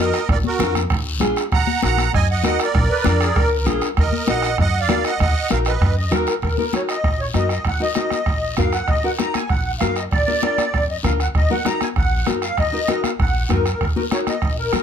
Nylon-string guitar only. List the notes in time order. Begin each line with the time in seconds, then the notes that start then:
Already playing: D#4
0.00 F#4 A#4
0.59 D4 F4 A#4
1.20 D4 F4 G#4
1.82 D#4 F#4 A#4
2.43 D#4 F#4 A#4
3.05 D4 F4 A#4
3.66 D4 F4 A#4
4.27 D#4 F#4 A#4
4.88 D#4 F#4 A#4
5.50 D#4 F#4 A#4
6.11 D#4 F#4 A#4
6.58 D#4 F#4 A#4
6.74 D#4 F#4 A#4
7.34 D#4 F#4 A#4
7.80 D#4 F#4 A#4
7.95 D#4 F#4 A#4
8.58 D#4 F#4 A#4
9.04 D#4 F#4 A#4
9.18 D#4 F#4 A#4
9.80 D#4 F#4 A#4
10.27 D4 F4 A#4
10.42 D4 F4 A#4
11.03 D4 F4 A#4
11.50 D#4 F#4 A#4
11.65 D#4 F#4 A#4
12.26 D#4 F#4 A#4
12.73 D#4 F#4 A#4
12.88 D#4 F#4 A#4
13.49 D#4 F#4 A#4
13.96 D#4 F#4 A#4
14.11 D#4 F#4 A#4
14.72 D#4 F#4 A#4